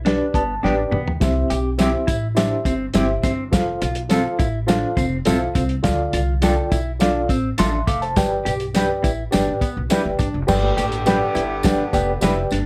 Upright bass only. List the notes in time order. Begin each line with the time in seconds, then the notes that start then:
Already playing: B1
0.34 G1
0.64 A1
0.92 B1
1.21 C2
1.51 B1
2.08 A1
2.65 G1
2.95 G1
3.24 G1
3.53 F1
3.82 B1
4.39 A1
4.97 F1
5.27 B1
5.55 C2
5.84 D2
6.13 C2
6.72 B1
7.30 A1
7.59 A1
7.88 F1
8.17 G1
8.46 B1
9.04 A1
9.34 G1
9.48 A1
9.77 B1
10.06 G1
10.20 G1
10.34 F1
10.49 G1
10.77 A1
11.36 G1
11.93 F1
12.22 F1
12.52 G1